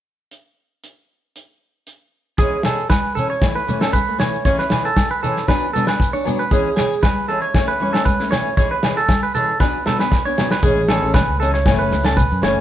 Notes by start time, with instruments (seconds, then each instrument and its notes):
0.31 closed hi-hat
0.84 closed hi-hat
1.36 closed hi-hat
1.87 closed hi-hat
2.38 steel-string acoustic guitar E3 G#3 C#4, clean electric guitar G#4, kick, muted conga, shekere
2.63 steel-string acoustic guitar E3 G#3 C#4, clean electric guitar A4, snare, low agogo, shekere
2.80 shekere
2.90 clean electric guitar B4, kick, snare, high conga, low agogo, shekere
3.15 steel-string acoustic guitar E3 C#4, clean electric guitar A4, shekere
3.30 clean electric guitar C#5
3.42 steel-string acoustic guitar E3 A3, muted steel-string acoustic guitar stroke, kick, snare, muted conga, low agogo, shekere
3.55 clean electric guitar B4
3.67 steel-string acoustic guitar E3 A3 C#4, muted conga, high conga, shekere
3.80 steel-string acoustic guitar A3 C#4, clean electric guitar A4, snare, low agogo
3.93 clean electric guitar B4, kick, high conga, shekere
4.08 steel-string acoustic guitar A3
4.18 steel-string acoustic guitar E3 A3 C#4, clean electric guitar C#5, snare, muted conga, low agogo, shekere
4.34 shekere
4.45 steel-string acoustic guitar E3 G#3 C#4, clean electric guitar C#5, kick, muted conga, shekere
4.59 clean electric guitar B4, snare
4.70 steel-string acoustic guitar E3 G#3 C#4, snare, low agogo, shekere
4.85 clean electric guitar A4, shekere
4.97 kick, snare, high conga, low agogo, shekere
5.11 clean electric guitar B4
5.23 steel-string acoustic guitar E3 G#3 C#4, clean electric guitar A4, shekere
5.36 snare
5.48 steel-string acoustic guitar F#3 B3 D4, clean electric guitar B4, kick, snare, low agogo, shekere
5.73 steel-string acoustic guitar F#3 B3 D4, clean electric guitar A4, muted conga, high conga, shekere
5.87 steel-string acoustic guitar D4, clean electric guitar B4, snare, low agogo
6.00 kick, shekere
6.13 steel-string acoustic guitar D4, clean electric guitar C#5, muted steel-string acoustic guitar stroke
6.25 steel-string acoustic guitar F#3 B3 D4, muted conga, high conga, low agogo, shekere
6.39 clean electric guitar B4, shekere
6.51 steel-string acoustic guitar E3 G#3 C#4, clean electric guitar G#4, kick, muted conga, shekere
6.76 steel-string acoustic guitar E3 C#4, clean electric guitar G#4, muted steel-string acoustic guitar stroke, snare, low agogo, shekere
6.92 shekere
7.03 clean electric guitar B4, kick, snare, high conga, low agogo, shekere
7.28 steel-string acoustic guitar E3 G#3 C#4, clean electric guitar A4
7.42 clean electric guitar C#5
7.54 steel-string acoustic guitar A3 C#4, muted steel-string acoustic guitar stroke, kick, snare, muted conga, low agogo, shekere
7.68 clean electric guitar B4
7.80 steel-string acoustic guitar E3 A3 C#4, muted conga, high conga
7.93 steel-string acoustic guitar C#4, clean electric guitar A4, snare, low agogo
7.97 steel-string acoustic guitar A3
8.05 clean electric guitar B4, kick, high conga, shekere
8.20 steel-string acoustic guitar A3 C#4, snare
8.31 steel-string acoustic guitar E3 A3 C#4, clean electric guitar C#5, snare, low agogo, shekere
8.46 shekere
8.57 steel-string acoustic guitar E3 G#3 C#4, clean electric guitar C#5, kick, muted conga, shekere
8.71 clean electric guitar B4
8.83 steel-string acoustic guitar E3 G#3 C#4, snare, low agogo, shekere
8.97 clean electric guitar A4, shekere
9.09 kick, snare, high conga, low agogo, shekere
9.23 clean electric guitar B4
9.35 steel-string acoustic guitar E3 G#3 C#4, clean electric guitar A4, shekere
9.60 steel-string acoustic guitar F#3 B3 D4, clean electric guitar B4, kick, snare, low agogo, shekere
9.86 steel-string acoustic guitar F#3 B3 D4, clean electric guitar A4, snare, muted conga, high conga, shekere
9.99 steel-string acoustic guitar B3 D4, clean electric guitar B4, snare, low agogo, shekere
10.12 kick, snare, shekere
10.25 steel-string acoustic guitar B3 D4, clean electric guitar C#5
10.38 steel-string acoustic guitar F#3 B3 D4, snare, muted conga, high conga, low agogo, shekere
10.51 clean electric guitar B4, snare, shekere
10.63 fingered electric bass A1, steel-string acoustic guitar E3 G#3 C#4, clean electric guitar G#4, kick, muted conga, shekere
10.88 steel-string acoustic guitar E3 G#3 C#4, clean electric guitar A4, snare, low agogo, shekere
11.02 fingered electric bass A1, steel-string acoustic guitar G#3 C#4
11.14 clean electric guitar B4, kick, snare, muted conga, high conga, low agogo, shekere
11.29 fingered electric bass C#2
11.40 steel-string acoustic guitar E3 G#3 C#4, clean electric guitar A4, shekere
11.54 clean electric guitar C#5, snare
11.66 fingered electric bass F#1, steel-string acoustic guitar E3 A3 C#4, kick, snare, low agogo, shekere
11.79 steel-string acoustic guitar A3 C#4, clean electric guitar B4, shekere
11.91 fingered electric bass C#2, snare, muted conga, high conga, shekere
12.04 steel-string acoustic guitar A3 C#4, clean electric guitar A4, snare, low agogo
12.16 clean electric guitar B4, kick, high conga, shekere
12.32 fingered electric bass F#2, shekere
12.42 fingered electric bass F#1, steel-string acoustic guitar E3 A3 C#4, clean electric guitar C#5, snare, low agogo, shekere